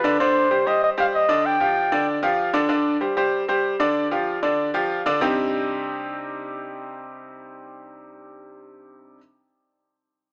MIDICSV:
0, 0, Header, 1, 3, 480
1, 0, Start_track
1, 0, Key_signature, -3, "minor"
1, 0, Tempo, 313480
1, 297, Time_signature, 4, 2, 24, 8
1, 15811, End_track
2, 0, Start_track
2, 0, Title_t, "Flugelhorn"
2, 0, Program_c, 0, 56
2, 0, Note_on_c, 0, 71, 89
2, 249, Note_off_c, 0, 71, 0
2, 298, Note_on_c, 0, 72, 98
2, 1020, Note_on_c, 0, 75, 89
2, 1043, Note_off_c, 0, 72, 0
2, 1258, Note_off_c, 0, 75, 0
2, 1279, Note_on_c, 0, 75, 96
2, 1382, Note_off_c, 0, 75, 0
2, 1531, Note_on_c, 0, 77, 101
2, 1631, Note_off_c, 0, 77, 0
2, 1755, Note_on_c, 0, 75, 101
2, 2232, Note_on_c, 0, 79, 107
2, 2255, Note_off_c, 0, 75, 0
2, 3183, Note_off_c, 0, 79, 0
2, 15811, End_track
3, 0, Start_track
3, 0, Title_t, "Grand piano"
3, 0, Program_c, 1, 0
3, 61, Note_on_c, 1, 50, 100
3, 65, Note_on_c, 1, 62, 93
3, 72, Note_on_c, 1, 74, 97
3, 256, Note_off_c, 1, 50, 0
3, 258, Note_off_c, 1, 62, 0
3, 262, Note_off_c, 1, 74, 0
3, 307, Note_on_c, 1, 50, 88
3, 311, Note_on_c, 1, 62, 95
3, 319, Note_on_c, 1, 74, 85
3, 696, Note_off_c, 1, 50, 0
3, 698, Note_off_c, 1, 62, 0
3, 703, Note_off_c, 1, 74, 0
3, 775, Note_on_c, 1, 55, 71
3, 782, Note_on_c, 1, 67, 73
3, 782, Note_on_c, 1, 72, 79
3, 972, Note_off_c, 1, 55, 0
3, 976, Note_off_c, 1, 67, 0
3, 976, Note_off_c, 1, 72, 0
3, 1019, Note_on_c, 1, 55, 75
3, 1023, Note_on_c, 1, 67, 77
3, 1027, Note_on_c, 1, 72, 80
3, 1411, Note_off_c, 1, 55, 0
3, 1413, Note_off_c, 1, 67, 0
3, 1416, Note_off_c, 1, 72, 0
3, 1492, Note_on_c, 1, 55, 87
3, 1497, Note_on_c, 1, 67, 91
3, 1503, Note_on_c, 1, 72, 86
3, 1887, Note_off_c, 1, 55, 0
3, 1890, Note_off_c, 1, 67, 0
3, 1893, Note_off_c, 1, 72, 0
3, 1970, Note_on_c, 1, 50, 91
3, 1977, Note_on_c, 1, 62, 101
3, 1980, Note_on_c, 1, 74, 97
3, 2365, Note_off_c, 1, 50, 0
3, 2370, Note_off_c, 1, 62, 0
3, 2371, Note_off_c, 1, 74, 0
3, 2454, Note_on_c, 1, 53, 77
3, 2463, Note_on_c, 1, 65, 73
3, 2464, Note_on_c, 1, 67, 79
3, 2848, Note_off_c, 1, 53, 0
3, 2853, Note_off_c, 1, 65, 0
3, 2854, Note_off_c, 1, 67, 0
3, 2939, Note_on_c, 1, 50, 84
3, 2941, Note_on_c, 1, 62, 87
3, 2944, Note_on_c, 1, 74, 99
3, 3331, Note_off_c, 1, 50, 0
3, 3332, Note_off_c, 1, 62, 0
3, 3334, Note_off_c, 1, 74, 0
3, 3407, Note_on_c, 1, 53, 92
3, 3412, Note_on_c, 1, 65, 96
3, 3418, Note_on_c, 1, 67, 83
3, 3804, Note_off_c, 1, 53, 0
3, 3806, Note_off_c, 1, 65, 0
3, 3810, Note_off_c, 1, 67, 0
3, 3882, Note_on_c, 1, 50, 104
3, 3886, Note_on_c, 1, 62, 99
3, 3888, Note_on_c, 1, 74, 95
3, 4084, Note_off_c, 1, 50, 0
3, 4086, Note_off_c, 1, 62, 0
3, 4088, Note_off_c, 1, 74, 0
3, 4116, Note_on_c, 1, 50, 94
3, 4124, Note_on_c, 1, 62, 89
3, 4131, Note_on_c, 1, 74, 83
3, 4517, Note_off_c, 1, 50, 0
3, 4522, Note_off_c, 1, 62, 0
3, 4526, Note_off_c, 1, 74, 0
3, 4605, Note_on_c, 1, 55, 74
3, 4607, Note_on_c, 1, 67, 70
3, 4614, Note_on_c, 1, 72, 67
3, 4806, Note_off_c, 1, 55, 0
3, 4807, Note_off_c, 1, 67, 0
3, 4811, Note_off_c, 1, 72, 0
3, 4849, Note_on_c, 1, 55, 80
3, 4851, Note_on_c, 1, 67, 83
3, 4862, Note_on_c, 1, 72, 86
3, 5245, Note_off_c, 1, 55, 0
3, 5246, Note_off_c, 1, 67, 0
3, 5252, Note_off_c, 1, 72, 0
3, 5334, Note_on_c, 1, 55, 84
3, 5340, Note_on_c, 1, 67, 88
3, 5344, Note_on_c, 1, 72, 93
3, 5728, Note_off_c, 1, 55, 0
3, 5731, Note_off_c, 1, 67, 0
3, 5733, Note_off_c, 1, 72, 0
3, 5813, Note_on_c, 1, 50, 96
3, 5817, Note_on_c, 1, 62, 95
3, 5823, Note_on_c, 1, 74, 107
3, 6207, Note_off_c, 1, 50, 0
3, 6209, Note_off_c, 1, 62, 0
3, 6213, Note_off_c, 1, 74, 0
3, 6295, Note_on_c, 1, 53, 76
3, 6303, Note_on_c, 1, 65, 85
3, 6303, Note_on_c, 1, 67, 76
3, 6688, Note_off_c, 1, 53, 0
3, 6693, Note_off_c, 1, 65, 0
3, 6693, Note_off_c, 1, 67, 0
3, 6777, Note_on_c, 1, 50, 93
3, 6781, Note_on_c, 1, 74, 93
3, 6784, Note_on_c, 1, 62, 83
3, 7170, Note_off_c, 1, 50, 0
3, 7172, Note_off_c, 1, 74, 0
3, 7174, Note_off_c, 1, 62, 0
3, 7256, Note_on_c, 1, 53, 84
3, 7264, Note_on_c, 1, 67, 88
3, 7266, Note_on_c, 1, 65, 91
3, 7649, Note_off_c, 1, 53, 0
3, 7654, Note_off_c, 1, 67, 0
3, 7655, Note_off_c, 1, 65, 0
3, 7746, Note_on_c, 1, 50, 105
3, 7752, Note_on_c, 1, 62, 100
3, 7756, Note_on_c, 1, 74, 101
3, 7938, Note_off_c, 1, 50, 0
3, 7942, Note_off_c, 1, 62, 0
3, 7944, Note_off_c, 1, 74, 0
3, 7975, Note_on_c, 1, 48, 94
3, 7979, Note_on_c, 1, 60, 88
3, 7980, Note_on_c, 1, 55, 85
3, 7987, Note_on_c, 1, 62, 89
3, 7990, Note_on_c, 1, 63, 81
3, 7992, Note_on_c, 1, 67, 111
3, 14052, Note_off_c, 1, 48, 0
3, 14053, Note_off_c, 1, 60, 0
3, 14054, Note_off_c, 1, 55, 0
3, 14058, Note_off_c, 1, 62, 0
3, 14059, Note_off_c, 1, 63, 0
3, 14060, Note_off_c, 1, 67, 0
3, 15811, End_track
0, 0, End_of_file